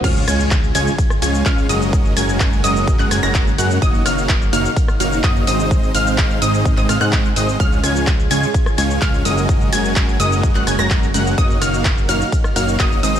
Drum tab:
CC |x---------------|----------------|----------------|----------------|
RD |x-x-x-x-x-x-x-x-|x-x-x-x-x-x-x-x-|x-x-x-x-x-x-x-x-|x-x-x-x-x-x-x-x-|
HH |--o---o-o-o---o-|--o---o---o---o-|--o---o-o-o---o-|--o---o---o---o-|
SH |xxxxxxxxxxxxxxxx|xxxxxxxxxxxxxxxx|xxxxxxxxxxxxxxxx|xxxxxxxxxxxxxxxx|
CP |----x-------x---|----x----x--x---|----x-------x---|----x----x--x---|
SD |--r------r------|----------rr----|--r------r------|----------rr----|
BD |o---o---o---o---|o---o---o---o---|o---o---o---o---|o---o---o---o---|

CC |----------------|----------------|----------------|
RD |x-x-x-x-x-x-x-x-|x-x-x-x-x-x-x-x-|x-x-x-x-x-x-x-x-|
HH |--o---o-o-o---o-|--o---o---o---o-|--o---o-o-o---o-|
SH |xxxxxxxxxxxxxxxx|xxxxxxxxxxxxxxxx|xxxxxxxxxxxxxxxx|
CP |----x-------x---|----x----x--x---|----x-------x---|
SD |--r------r------|----------rr----|--r------r------|
BD |o---o---o---o---|o---o---o---o---|o---o---o---o---|